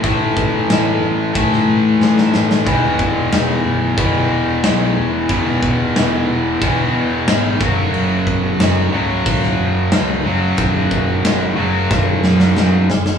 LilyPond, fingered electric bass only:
\new Staff \with { instrumentName = "Fingered electric bass" } { \clef bass \time 4/4 \key fis \dorian \tempo 4 = 91 a,,8 a,,8 a,,8 a,,8 a,,8 a,8 a,8 a,,8 | e,,4 e,,8 b,,,8 b,,,8 e,,8 b,,8 e,,8 | e,,8 e,,8 e,,8 e,,8 e,,8 e,8 gis,,8 fis,,8 | fis,,4 fis,,8 cis,,8 cis,,8 fis,,8 cis,8 fis,,8 |
fis,,8 fis,,8 fis,,8 fis,,8 fis,,8 fis,8 fis,8 fis,,8 | }